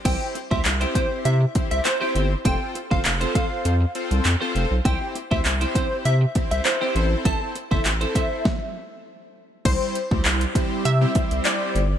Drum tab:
CC |x---------------|----------------|----------------|----------------|
HH |x-x-xxx-x-xxx-x-|x-x-xxx-x-xxx-x-|x-x-xxx-x-xxx-x-|x-x-xxx---------|
CP |----x-------x---|----x-------x---|----x-------x---|----x-----------|
SD |----------------|----------------|----------------|--------o-------|
BD |o--o--o---o-----|o--o--o---------|o--o--o---o-----|o--o--o-o-------|

CC |x---------------|
HH |x-x-xxx-x-xxx-x-|
CP |----x-------x---|
SD |----------------|
BD |o--o--o---o-----|